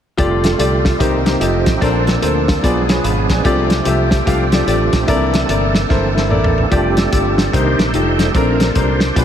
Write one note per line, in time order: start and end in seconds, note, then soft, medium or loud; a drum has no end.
0.17 0.53 F1 medium
0.17 1.00 D3 medium
0.17 1.40 G3 soft
0.17 1.00 A3 medium
0.17 2.61 C4 medium
0.17 0.48 F4 loud
0.17 1.00 F4 medium
0.17 0.48 G4 medium
0.17 0.49 A4 medium
0.17 0.49 D5 medium
0.17 kick loud
0.17 closed hi-hat medium
0.44 snare medium
0.44 closed hi-hat medium
0.59 0.94 C2 medium
0.59 0.89 F4 medium
0.59 0.89 G4 medium
0.59 0.90 A4 medium
0.59 0.90 D5 medium
0.59 closed hi-hat medium
0.85 kick medium
0.85 snare loud
0.85 closed hi-hat medium
0.99 1.35 C2 loud
0.99 1.38 C3 medium
0.99 1.41 D#3 medium
0.99 1.41 A#3 medium
0.99 1.16 D#4 medium
0.99 1.17 G4 medium
0.99 1.81 G4 medium
0.99 1.17 A#4 medium
0.99 1.17 C5 medium
0.99 kick loud
0.99 closed hi-hat medium
1.25 1.35 D#4 medium
1.25 1.35 G4 medium
1.25 1.36 A#4 medium
1.25 1.36 C5 medium
1.25 snare loud
1.25 closed hi-hat medium
1.40 1.63 F1 medium
1.40 3.43 F3 medium
1.40 1.81 A3 medium
1.40 1.81 D#4 medium
1.40 1.71 F4 medium
1.40 1.71 G4 medium
1.40 1.71 A4 medium
1.40 1.71 D#5 medium
1.40 closed hi-hat medium
1.66 1.79 A1 medium
1.66 kick medium
1.66 snare medium
1.66 closed hi-hat medium
1.81 2.16 A#1 medium
1.81 2.45 A#2 medium
1.81 2.62 A#3 medium
1.81 2.12 D4 medium
1.81 6.67 D4 medium
1.81 2.12 A4 medium
1.81 2.63 A4 medium
1.81 2.12 A#4 medium
1.81 2.13 C5 loud
1.81 kick loud
1.81 closed hi-hat medium
2.07 snare medium
2.07 closed hi-hat medium
2.21 2.57 D2 medium
2.21 2.52 D4 medium
2.21 2.52 A4 medium
2.21 2.53 A#4 medium
2.21 2.53 C5 medium
2.21 closed hi-hat medium
2.48 kick medium
2.48 snare loud
2.48 closed hi-hat medium
2.63 2.98 B1 loud
2.63 3.26 B2 medium
2.63 3.44 G#3 medium
2.63 3.44 B3 medium
2.63 2.80 F4 medium
2.63 2.80 G#4 medium
2.63 3.44 G#4 medium
2.63 2.80 B4 medium
2.63 2.80 D5 medium
2.63 kick loud
2.63 closed hi-hat medium
2.89 2.99 F4 medium
2.89 2.99 G#4 medium
2.89 2.99 B4 medium
2.89 2.99 C#5 medium
2.89 snare loud
2.89 closed hi-hat medium
3.04 3.26 G#1 medium
3.04 3.29 F5 soft
3.04 3.29 B5 medium
3.04 closed hi-hat medium
3.29 3.42 A#1 medium
3.29 3.44 D5 medium
3.29 3.69 G#5 medium
3.29 kick medium
3.29 snare medium
3.29 closed hi-hat medium
3.44 3.80 C2 medium
3.44 4.08 C3 medium
3.44 5.07 F3 medium
3.44 5.07 A3 medium
3.44 6.68 C4 medium
3.44 3.75 F4 loud
3.44 3.75 G4 medium
3.44 5.07 G4 medium
3.44 3.75 A4 medium
3.44 3.76 D5 loud
3.44 kick loud
3.44 closed hi-hat medium
3.70 snare medium
3.70 closed hi-hat medium
3.85 4.21 C2 medium
3.85 4.16 F4 medium
3.85 4.16 G4 medium
3.85 4.16 A4 medium
3.85 4.17 E5 medium
3.85 closed hi-hat loud
4.11 kick medium
4.11 snare loud
4.11 closed hi-hat medium
4.26 4.62 C2 medium
4.26 4.43 F4 medium
4.26 4.43 G4 medium
4.26 4.43 A4 medium
4.26 4.44 F5 medium
4.26 kick loud
4.26 closed hi-hat medium
4.52 4.62 F4 medium
4.52 4.62 G4 medium
4.52 4.63 A4 medium
4.52 4.63 D5 medium
4.52 snare loud
4.52 closed hi-hat medium
4.66 4.89 A1 medium
4.66 4.97 F4 medium
4.66 4.98 G4 medium
4.66 4.98 A4 medium
4.66 4.98 D5 medium
4.66 closed hi-hat medium
4.93 kick medium
4.93 snare medium
4.93 closed hi-hat medium
5.07 5.43 C2 loud
5.07 5.71 C3 medium
5.07 6.70 E3 medium
5.07 6.70 A#3 medium
5.07 5.38 E4 loud
5.07 5.38 A4 medium
5.07 6.70 A4 medium
5.07 5.39 A#4 medium
5.07 5.39 D5 loud
5.07 kick loud
5.07 closed hi-hat medium
5.34 snare loud
5.34 closed hi-hat medium
5.48 5.84 G1 medium
5.48 5.79 E4 medium
5.48 5.79 A4 medium
5.48 5.79 A#4 medium
5.48 5.80 D5 medium
5.48 closed hi-hat medium
5.75 snare loud
5.75 closed hi-hat medium
5.89 6.30 G1 medium
5.89 6.06 E4 medium
5.89 6.06 A4 medium
5.89 6.07 A#4 medium
5.89 6.07 C5 medium
5.89 kick loud
5.89 snare medium
6.15 6.25 E4 medium
6.15 6.25 A4 medium
6.15 6.25 A#4 medium
6.15 6.26 C5 medium
6.15 snare medium
6.29 6.65 A1 medium
6.29 6.60 E4 medium
6.29 6.60 A4 medium
6.29 6.61 A#4 medium
6.29 6.61 D5 medium
6.29 mid tom medium
6.44 floor tom medium
6.58 floor tom medium
6.71 7.06 F1 medium
6.71 7.35 G3 soft
6.71 7.35 A3 soft
6.71 6.98 C4 medium
6.71 6.98 D4 medium
6.71 7.02 F4 medium
6.71 7.02 G4 medium
6.71 6.99 G4 medium
6.71 7.02 A4 medium
6.71 7.02 D5 medium
6.71 kick medium
6.71 closed hi-hat medium
6.97 7.50 C4 medium
6.97 7.50 D4 medium
6.97 7.55 A4 medium
6.97 snare loud
6.97 closed hi-hat medium
7.11 7.47 G1 medium
7.11 7.42 F4 medium
7.11 7.42 G4 medium
7.11 7.43 A4 medium
7.11 7.43 D5 medium
7.11 kick medium
7.11 closed hi-hat loud
7.38 snare loud
7.38 closed hi-hat medium
7.52 7.75 C2 medium
7.52 7.91 C3 medium
7.52 7.92 D#3 medium
7.52 7.92 A#3 soft
7.52 7.93 D4 medium
7.52 7.83 D#4 medium
7.52 7.87 D#4 medium
7.52 7.83 G4 medium
7.52 7.92 G4 medium
7.52 7.84 A#4 medium
7.52 7.84 C5 medium
7.52 7.80 C5 medium
7.52 kick loud
7.52 closed hi-hat medium
7.79 7.92 A#1 medium
7.79 7.87 B4 medium
7.79 snare loud
7.79 closed hi-hat medium
7.87 7.94 D#4 medium
7.87 8.32 A4 medium
7.87 8.29 C5 medium
7.93 8.28 F1 medium
7.93 8.33 G3 soft
7.93 8.33 A3 soft
7.93 8.24 D#4 medium
7.93 8.34 D#4 medium
7.93 8.24 F4 medium
7.93 8.25 G4 medium
7.93 8.25 A4 medium
7.93 closed hi-hat medium
8.19 snare medium
8.19 closed hi-hat medium
8.29 8.36 G4 medium
8.34 8.69 A#1 medium
8.34 8.98 A#2 medium
8.34 8.65 A3 medium
8.34 8.65 C4 medium
8.34 8.65 C4 soft
8.34 8.65 D4 medium
8.34 8.66 D4 medium
8.34 9.13 F4 medium
8.34 8.65 A4 medium
8.34 8.70 A#4 medium
8.34 8.66 A#4 loud
8.34 kick medium
8.34 closed hi-hat medium
8.60 snare medium
8.60 closed hi-hat medium
8.70 8.76 A4 medium
8.75 9.10 C2 medium
8.75 9.06 C4 medium
8.75 9.06 D4 medium
8.75 9.16 D4 soft
8.75 9.25 G4 medium
8.75 9.06 A4 medium
8.75 9.06 A#4 medium
8.75 9.25 C5 soft
8.75 kick medium
8.75 closed hi-hat medium
9.00 snare loud
9.00 closed hi-hat medium
9.15 9.25 B1 medium
9.15 9.25 B2 medium
9.15 9.25 F3 soft
9.15 9.25 G#3 soft
9.15 9.25 D4 medium
9.15 9.25 F4 medium
9.15 9.25 G#4 medium
9.15 9.25 B4 medium
9.15 kick loud
9.15 closed hi-hat medium